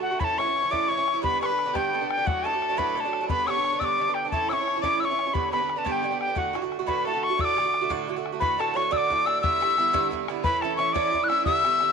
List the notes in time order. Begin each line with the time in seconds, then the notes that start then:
Already playing: D3 A3
0.02 F#4 F#5
0.11 D3 A3 F#4
0.19 A2 E3 C#4 E4 A4 B5, bodhran
0.24 A5
0.38 A2 E3 C#4 E4 C#5 C#6, bodhran
0.46 E3 C#4 E4
0.56 bodhran
0.62 E3 C#4 E4
0.71 A2 E3 C#4 E4 D5 D6, bodhran
0.88 A2 E3 C#4 E4 C#5 C#6
0.97 E3 C#4 E4
1.08 bodhran
1.14 E3 C#4 E4
1.22 G2 D3 B3 D4 B4 B5, bodhran
1.40 G2 D3 B3 D4 B4 C#6, bodhran
1.46 D4 B5
1.50 D3 B3
1.59 bodhran
1.66 D3 B3 D4
1.74 G2 D3 B3 D4 G4 G5, bodhran
1.93 G2 D3 B3 D4 A4
2.01 D3 B3 D4
2.10 G5, bodhran
2.17 D3 B3 D4
2.25 A2 F#3 A3 D4 F#4 F#5, bodhran
2.44 A2 F#3 A3 D4 A4 A5, bodhran
2.53 F#3 A3 D4
2.62 bodhran
2.69 F#3 A3 D4
2.77 A2 F#3 A3 D4 B4 B5, bodhran
2.95 A2 F#3 A3 D4 A4 B5
3.00 A5
3.05 F#3 A3 D4
3.11 A4, bodhran
3.21 F#3 A3 D4
3.28 G2 D3 B3 D4 B4 B5, bodhran
3.46 G2 D3 B3 D4 C#5 E6, bodhran
3.50 C#6
3.56 D3 B3 D4
3.64 bodhran
3.72 D3 B3 D4
3.79 G2 D3 B3 D4 D5 E6, bodhran
3.85 D6
3.99 G2 D3 B3 D4
4.08 D3 B3 D4
4.14 G4 G5, bodhran
4.25 D3 B3 D4
4.30 A2 E3 C#4 E4 A4 A5, bodhran
4.49 A2 E3 C#4 E4 C#5 E6, bodhran
4.53 C#6
4.59 E3 C#4 E4
4.68 bodhran
4.76 E3 C#4 E4
4.82 A2 E3 C#4 E4 D5 D6, bodhran
5.00 A2 E3 C#4 C#5 E6
5.04 E4 C#6
5.10 E3 C#4 E4
5.19 bodhran
5.26 E3 C#4 E4
5.33 G2 D3 B3 D4 B4 B5, bodhran
5.47 C#5
5.52 G2 D3 B3 D4 B4 B5, bodhran
5.60 D3 B3 D4
5.69 bodhran
5.76 D3 B3 D4 A5
5.85 G2 D3 B3 D4 G4 A5, bodhran
5.92 G5
6.03 G2 D3 B3 D4
6.11 D3 B3 D4
6.21 G4 G5, bodhran
6.27 D3 B3 D4
6.35 A2 D3 A3 F#4 F#5, bodhran
6.53 A2 D3 A3 F#4, bodhran
6.62 D3 A3 F#4
6.72 bodhran
6.79 D3 A3 F#4
6.86 A2 D3 A3 F#4 B4 B5, bodhran
7.05 A2 D3 A3 F#4 A4 A5
7.13 D3 A3 F#4
7.23 C#6, bodhran
7.30 D3 A3 F#4
7.38 A2 D3 A3 F#4 D5 E6, bodhran
7.45 D6
7.56 A2 D3 A3 F#4, bodhran
7.65 D3 A3 F#4
7.74 bodhran
7.81 D3 A3 F#4
7.89 A2 D3 A3 F#4, bodhran
8.07 A2 D3 A3 F#4
8.16 D3 A3 F#4
8.26 bodhran
8.32 D3 A3 F#4
8.40 A2 D3 A3 F#4 B4 B5, bodhran
8.58 A2 D3 A3 F#4 A4 A5, bodhran
8.74 A2 D3 A3 F#4 C#5 C#6, bodhran
8.91 A2 D3 A3 F#4 D5 E6, bodhran
8.97 D6
9.10 A2 D3 A3 F#4, bodhran
9.26 A2 D3 A3 F#4 E5 E6, bodhran
9.42 G2 D3 B3 E4 E5 E6, bodhran
9.60 G2 D3 B3 E4, bodhran
9.77 G2 D3 B3 E4, bodhran
9.93 G2 D3 B3 E4, bodhran
10.11 G2 D3 B3 E4, bodhran
10.28 G2 D3 B3 E4, bodhran
10.43 A2 E3 C#4 E4 B4 B5, bodhran
10.61 A2 E3 C#4 E4 A4 A5, bodhran
10.77 A2 E3 C#4 E4 C#5 C#6, bodhran
10.93 A2 E3 C#4 E4 D5 D6, bodhran
11.13 A2 E3 C#4 E4 D5, bodhran
11.24 F#6
11.28 A2 E3 C#4 E4 E5 E6, bodhran
11.44 G2 D3 B3 E4 E5 E6, bodhran
11.64 G2 D3 B3 E4, bodhran
11.80 G2 D3 B3 E4, bodhran